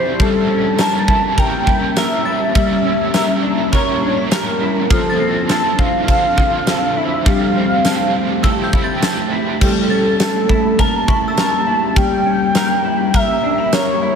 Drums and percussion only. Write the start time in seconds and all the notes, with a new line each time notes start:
0.20 kick, ride
0.78 snare, ride, tambourine
1.08 kick
1.38 kick, ride
1.67 kick
1.96 snare, ride, tambourine
2.55 kick, ride
3.14 snare, ride, tambourine
3.73 kick, ride
4.31 snare, ride, tambourine
4.90 kick, ride
5.49 snare, ride, tambourine
5.79 kick
6.08 kick, ride
6.38 kick
6.67 snare, ride, tambourine
7.26 kick, ride
7.85 snare, ride, tambourine
8.44 kick, ride
8.73 kick
9.02 snare, ride, tambourine
9.61 kick, crash
10.20 snare, ride, tambourine
10.49 kick
10.79 kick, ride
11.08 kick
11.37 snare, ride, tambourine
11.96 kick, ride
12.55 snare, ride, tambourine
13.14 kick, ride
13.72 snare, ride, tambourine